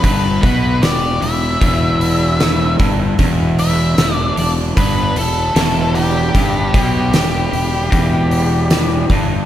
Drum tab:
HH |oooooooo|oooooooo|oooooooo|
SD |--o---o-|--o---o-|--o---o-|
BD |oo--o--o|o---o---|oo--o--o|